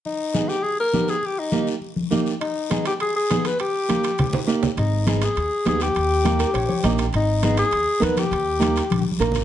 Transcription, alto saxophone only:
\new Staff \with { instrumentName = "Alto saxophone" } { \time 4/4 \key gis \minor \tempo 4 = 203 dis'4. g'8 gis'8 ais'4 gis'8 | g'8 dis'4 r2 r8 | dis'4. g'8 gis'8 gis'4 b'8 | g'2. r4 |
dis'4 dis'8 gis'4. gis'8 g'8~ | g'2.~ g'8 r8 | dis'4 dis'8 gis'4. b'8 g'8~ | g'2~ g'8 r4. | }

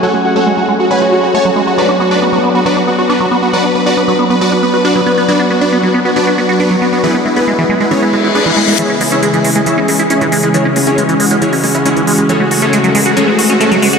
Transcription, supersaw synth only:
\new Staff \with { instrumentName = "Supersaw synth" } { \time 4/4 \key cis \phrygian \tempo 4 = 137 <fis' a' cis'' fis''>16 fis'16 fis'16 <fis' a' cis'' fis''>16 fis'16 fis'16 r16 fis'16 <b' fis'' gis'' b''>16 fis'16 fis'16 fis'16 <cis'' gis'' a'' cis'''>16 fis'16 fis'16 fis'16 | <d' fis' b' d''>16 fis'16 fis'16 <d' fis' b' d''>16 fis'16 fis'16 r16 fis'16 <d' fis' b' d''>16 fis'16 fis'16 fis'16 <b d' fis' b'>16 fis'16 fis'16 fis'16 | <fis' b' d'' fis''>16 b'16 b'16 <fis' b' d'' fis''>16 b'16 b'16 r16 b'16 <fis' b' d'' fis''>16 b'16 b'16 b'16 <d' fis' b' d''>16 b'16 b'16 b'16 | <d' fis' b' d''>16 fis'16 fis'16 <d' fis' b' d''>16 fis'16 fis'16 r16 fis'16 <d' fis' b' d''>16 fis'16 fis'16 fis'16 <b d' fis' b'>16 fis'16 fis'16 fis'16 |
<b e' gis' b'>16 e'16 e'16 <b e' gis' b'>16 e'16 e'16 r16 e'16 <cis' e' gis' cis''>16 e'16 e'16 e'16 <d' gis' b' d''>16 e'16 e'16 e'16 | <e' gis' cis'' e''>16 gis'16 gis'16 <e' gis' cis'' e''>16 gis'16 gis'16 r16 gis'16 <e' gis' cis'' e''>16 gis'16 gis'16 gis'16 <cis' e' gis' cis''>16 gis'16 gis'16 gis'16 | <cis' e' gis' cis''>16 cis'16 cis'16 <cis' e' gis' cis''>16 cis'16 cis'16 r16 cis'16 <cis' e' gis' cis''>16 cis'16 cis'16 cis'16 <gis cis' e' gis'>16 cis'16 cis'16 cis'16 | <cis' gis' a' cis''>16 fis'16 fis'16 <cis' gis' a' cis''>16 fis'16 fis'16 r16 fis'16 <cis' gis' a' cis''>16 fis'16 fis'16 fis'16 <a cis' fis' a'>16 fis'16 fis'16 fis'16 | }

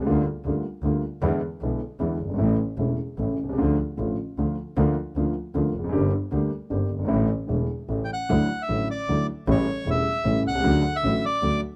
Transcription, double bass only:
\new Staff \with { instrumentName = "Double bass" } { \clef bass \time 3/4 \key a \phrygian \tempo 4 = 154 d,8 r8 d,8 r8 d,8 r8 | e,8 r8 b,,8 r8 e,8 g,,8 | a,,8 r8 e,,8 r8 a,,8 c,8 | d,8 r8 a,,8 r8 d,8 r8 |
d,8 r8 d,8 r8 d,8 f,,8 | g,,8 r8 d,8 r8 g,,8 g,,8 | a,,8 r8 e,,8 r8 a,,8 r8 | \key d \major d,8 r8 a,,8 r8 d,8 r8 |
a,,8 r8 e,,8 r8 a,,8 c,8 | d,8 r8 a,,8 r8 d,8 r8 | }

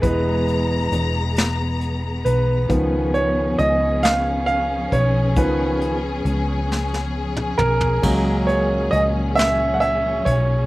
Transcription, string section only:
\new Staff \with { instrumentName = "String section" } { \time 6/8 \key cis \dorian \tempo 4. = 45 << { ais''2. | gis'2.~ | gis'2.~ | gis'2. | } \\ { <e gis b>2. | <eis cis'>2.~ | <eis cis'>2. | <ais, fis cis'>2. | } >> }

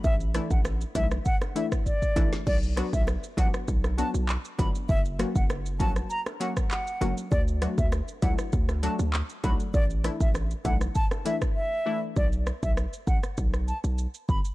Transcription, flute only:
\new Staff \with { instrumentName = "Flute" } { \time 4/4 \key a \mixolydian \tempo 4 = 99 e''16 r8 fis''16 r8 e''16 r16 fis''16 r16 e''16 r16 d''8. r16 | d''16 r8 e''16 r8 fis''16 r8. a''16 r8. b''16 r16 | e''16 r8 fis''16 r8 a''16 r16 ais''16 r16 fis''16 r16 fis''8. r16 | d''16 r8 e''16 r8 fis''16 r8. a''16 r8. b''16 r16 |
d''16 r8 e''16 r8 fis''16 r16 a''16 r16 e''16 r16 e''8. r16 | d''16 r8 e''16 r8 fis''16 r8. a''16 r8. b''16 r16 | }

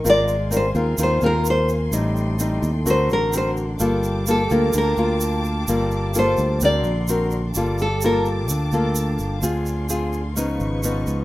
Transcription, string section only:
\new Staff \with { instrumentName = "String section" } { \time 4/4 \key g \minor \tempo 4 = 128 << { c'''1~ | c'''1 | d'''1~ | d'''2 c'''2 |
d'''1 | c'''2 cis'''2 | } \\ { <bes' f'' aes''>1 | <a' ees'' g''>2 <bes' d'' fis''>2 | <f'' g'' a''>1~ | <f'' g'' a''>2 <ais' d'' fis''>2 |
<f'' g'' a''>1 | <aes' d''>2 <b' dis''>2 | } >> }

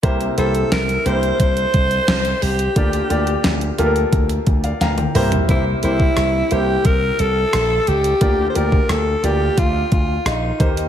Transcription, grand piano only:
<<
  \new Staff \with { instrumentName = "Grand piano" } { \time 4/4 \key c \dorian \tempo 4 = 88 <bes e' g' c''>8 <bes e' g' c''>8 r8 <bes d' e' g' c''>4 r4. | <bes f' g' d''>8 <bes f' g' d''>8 r8 <bes f' g' a' bes'>4 r16 <d'' f''>16 <f'' g'' bes''>16 g''16 <bes e' g' c'' bes''>8 | <bes e' g' c''>8 <bes e' g' c''>8 r8 <bes e' g' c''>4 r4. | <bes f' g' d''>8 <bes f' g' d''>8 r8 <bes f' g' d''>4 r4 <bes ees' g' c''>8 | }
  \new Staff \with { instrumentName = "Grand piano" } { \clef bass \time 4/4 \key c \dorian c4. r2 r8 | d4. r2 r8 | c4. r2 r8 | d4. r2 ees8 | }
>>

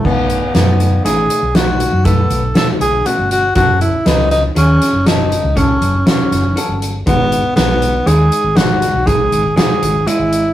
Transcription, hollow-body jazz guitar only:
\new Staff \with { instrumentName = "Hollow-body jazz guitar" } { \time 7/4 \key b \mixolydian \tempo 4 = 120 <b, a dis'>8. r16 <b, a dis'>8. r16 <b, a dis'>8. r16 <b, a dis'>8. r16 <b, a b>8. r16 <b, a dis'>8. r16 <b, a cis'>8. r16 | <fis cis' a'>8. r16 <fis cis' b'>8. r16 <fis cis' gis'>8. r16 <fis cis' a'>8. r16 <fis cis' a'>8. r16 <fis cis' fis'>8. r16 <fis cis' a'>8. r16 | <gis dis' fis'>8. r16 <gis dis' fis'>8. r16 <gis dis' gis'>8. r16 <gis dis' fis'>8. r16 <gis dis' gis'>8. r16 <gis dis' fis'>8. r16 <gis gis' dis''>8. r16 | }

